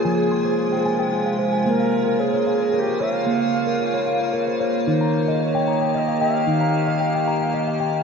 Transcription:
Already playing: F4 C#5
0.04 C3 F3 G#3 F4 G#4 G#5
0.31 C6
0.45 C5
0.72 C5 G5
0.85 G#5
0.99 G5
1.12 F4
1.26 F5
1.39 C5
1.53 G#5
1.65 C#3 A#3 F4 C5
1.69 A#4
1.80 F5
2.06 A#4
2.19 G#4 C#5
2.33 C#5
2.47 F5
2.60 C#5
2.73 G#4 A#4
2.78 G4
2.88 C5
3.00 C#5 E5
3.12 F5
3.26 A#3
3.40 F5
3.67 A#4
3.80 C#5
3.94 C#5
4.07 F5
4.33 A#4
4.47 C5
4.60 C#5
4.87 D#3 D#4 G4 C#5
4.92 C5
5.01 A#5
5.28 D#5
5.42 C#5
5.55 G5
5.68 A#5
5.81 G5
5.95 D#5 F5
6.08 F5
6.21 F5 G5
6.47 D#3 D#4
6.61 A#5
6.87 D#5
7.01 G5
7.15 G5
7.28 A#5
7.41 G5
7.54 D#5
7.67 F5
7.80 G5

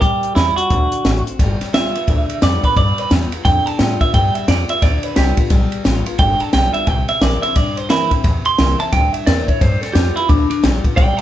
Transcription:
0.01 G2 G3 G4, kick, closed hi-hat
0.23 muted upright bass stroke, closed hi-hat
0.35 E2 G3 B3 E4 F4, snare, closed hi-hat
0.56 F#4, closed hi-hat
0.70 D2 D3, kick, closed hi-hat
0.92 muted upright bass stroke, closed hi-hat
1.04 A1 D3 A3 C4 F#4, snare, closed hi-hat
1.26 C4 F#4, closed hi-hat
1.39 G1 G3, kick, snare, ride
1.61 muted upright bass stroke, snare, ride
1.73 B1 G3 B3 F4 E5, snare, ride
1.94 B3 F4, muted upright bass stroke, ride
2.07 D2 D3, kick, ride
2.30 ride
2.42 F2 G3 B3 F4 D5, snare, ride
2.63 B3 F4 B4, kick, ride
2.76 G2 G3 D5, kick, ride
2.98 B4, muted upright bass stroke, ride
3.10 E2 G3 B3 F4, snare, ride
3.32 B3 F4, muted upright bass stroke, ride
3.45 F2 D3 G5, kick, snare, ride
3.66 A5, muted upright bass stroke, ride
3.78 A2 G3 B3 F4 G5, snare, ride
4.01 B3 F4 E5, muted upright bass stroke, kick, ride
4.14 G2 G3 G5, kick, ride
4.34 E5, muted upright bass stroke, ride
4.48 F2 G3 B3 F4 D5, snare, ride
4.68 B3 F4 E5, muted upright bass stroke, ride
4.82 D2 D3 D5, kick, snare, ride
5.03 B4, ride
5.16 C2 G3 B3 F4 G4, snare, ride
5.37 B3 F4, muted upright bass stroke, kick, ride
5.50 B1 G3, kick, snare, ride
5.72 ride
5.84 A1 G3 B3 F4, snare, ride
6.06 B3 F4, ride
6.19 G1 D3 G5, kick, ride
6.40 A5, muted upright bass stroke, ride
6.53 B1 G3 B3 F4 G5, snare, ride
6.74 E5, ride
6.87 C2 C3 G5, kick, ride
7.08 E5, ride
7.21 A#1 E3 A#3 C4 E4 D5, snare, ride
7.42 C4 E4 E5, ride
7.56 C2 G2 D5, kick, snare, ride
7.77 C5, muted upright bass stroke, ride
7.89 D2 E3 A#3 C4 E4, snare, ride
8.11 C4 E4, kick, ride
8.24 E2 C3, kick, snare, ride
8.45 C6, muted upright bass stroke, ride
8.58 C2 E3 A#3 C4 E4, snare, ride
8.80 C4 E4 A5, ride
8.93 D2 G2 G5, kick, snare, ride
9.13 E5, muted upright bass stroke, ride
9.27 E2 E3 A#3 C4 E4 D5, snare, ride
9.47 C4 E4 C#5, kick, ride
9.61 G2 G3 C5, kick, snare, ride
9.81 A4, snare, ride
9.93 F2 G3 B3 F4 G4, snare, ride
10.16 B3 E4 F4, muted upright bass stroke, ride
10.29 D2 D3 D4, kick, ride
10.50 D4, ride
10.63 A#1 G3 B3 F4, snare, ride
10.84 B3 F4, muted upright bass stroke, kick, ride
10.96 B1 G3 D5 G5, kick, snare, ride
11.17 F5 A5, muted upright bass stroke, ride

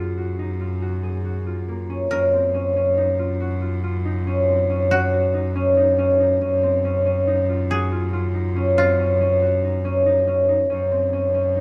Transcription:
Already playing: F#2 A#3 C#4 D#4 F4 G#4
0.17 F#4
0.39 D#4
0.60 F4
0.82 F#4
1.03 G#4
1.25 F#4
1.46 F4
1.68 A#3
1.90 C#4
2.11 F#2 C#4 A#4
2.33 C4
2.54 C#4
2.76 C#4
2.97 D#4
3.19 F4
3.40 F#4
3.62 F4
3.84 F4
4.05 D#4
4.27 C#4
4.48 C4
4.70 C#4
4.91 C#4 F#4
5.13 F#4
5.34 D#4
5.55 C#4
5.77 D#4
5.98 C#4
6.20 D#4
6.41 F#2 C#4
6.63 C4
6.84 C#4
7.06 C#4
7.27 D#4
7.49 F4
7.70 F#4 G#4
7.92 F4
8.13 F4
8.34 D#4
8.56 C#4
8.78 C4 F4
8.99 C#4
9.21 C#4
9.42 F#4
9.63 D#4
9.85 C#4
10.06 D#4
10.27 C#4
10.49 D#4
10.70 F#2 C#4
10.91 C4
11.13 C#4
11.34 C#4
11.56 D#4

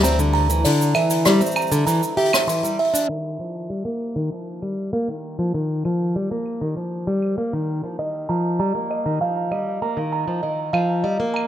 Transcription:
Already playing: D2
0.03 C4 A#5, cross-stick, open hi-hat, cabasa
0.07 cross-stick
0.11 cross-stick
0.15 cross-stick
0.19 D3, cabasa
0.34 A#5, open hi-hat
0.50 E3, cabasa
0.65 D3 D5, open hi-hat, cabasa
0.81 cabasa
0.94 E3 E5, open hi-hat, claves
1.10 open hi-hat, cabasa
1.25 G3 D5, cross-stick, open hi-hat, cabasa
1.41 C4, cabasa
1.46 cabasa
1.51 cabasa
1.56 A#5, cabasa, claves
1.62 cabasa
1.67 cabasa
1.72 D3, open hi-hat, cabasa
1.87 E3 A#5, open hi-hat, cabasa
2.03 cabasa
2.17 G4 E5, open hi-hat
2.26 open hi-hat
2.33 cross-stick, open hi-hat, cabasa, claves
2.47 E3 C6, open hi-hat, cabasa
2.63 G3, cabasa
2.79 E5, open hi-hat
2.85 open hi-hat
2.89 open hi-hat
2.94 D4, open hi-hat, cabasa
3.00 open hi-hat
3.05 open hi-hat
3.09 D#3, crash
3.40 F3
3.70 G3
3.85 A#3
4.01 claves
4.16 D#3
4.32 F3
4.62 G3, claves
4.93 A#3
5.08 D#3
5.39 F3
5.54 D#3
5.85 F3, claves
6.16 G3
6.31 A#3
6.46 claves
6.61 D#3
6.77 F3
7.07 G3
7.22 claves
7.38 A#3
7.53 D#3
7.84 F3
7.99 D#3 D#5
8.29 F3 A#5
8.59 G3 A#5
8.75 A#3
8.91 D#5, claves
9.06 D#3
9.21 F3 F5
9.51 G3 D#5, claves
9.82 A#3 A#5
9.97 D#3
10.12 A#5
10.28 F3
10.43 D#3 D#5
10.73 F3 F5, claves
11.04 G3 D#5
11.20 A#3
11.34 A#5, claves

